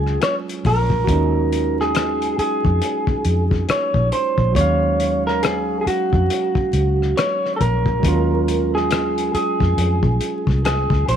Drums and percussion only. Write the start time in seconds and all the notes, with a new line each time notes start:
0.06 cross-stick
0.21 cross-stick, closed hi-hat
0.49 closed hi-hat
0.65 kick, open hi-hat
0.90 kick
1.07 kick, closed hi-hat
1.53 closed hi-hat
1.81 cross-stick
1.95 cross-stick, closed hi-hat
2.22 closed hi-hat
2.39 closed hi-hat
2.65 kick
2.82 closed hi-hat
3.07 kick
3.25 closed hi-hat
3.51 kick, cross-stick
3.69 cross-stick, closed hi-hat
3.94 kick
4.12 closed hi-hat
4.38 kick
4.55 kick, closed hi-hat
5.00 closed hi-hat
5.28 cross-stick
5.43 cross-stick, closed hi-hat
5.87 closed hi-hat
6.13 kick
6.30 closed hi-hat
6.55 kick
6.73 closed hi-hat
7.02 cross-stick
7.17 cross-stick, closed hi-hat
7.46 cross-stick
7.61 kick, closed hi-hat
7.86 kick
8.03 kick, closed hi-hat
8.48 closed hi-hat
8.77 cross-stick
8.91 cross-stick, closed hi-hat
9.18 closed hi-hat
9.35 closed hi-hat
9.60 kick, cross-stick
9.78 closed hi-hat
10.03 kick
10.21 closed hi-hat
10.47 kick, cross-stick
10.65 cross-stick, closed hi-hat
10.90 kick, cross-stick
11.08 closed hi-hat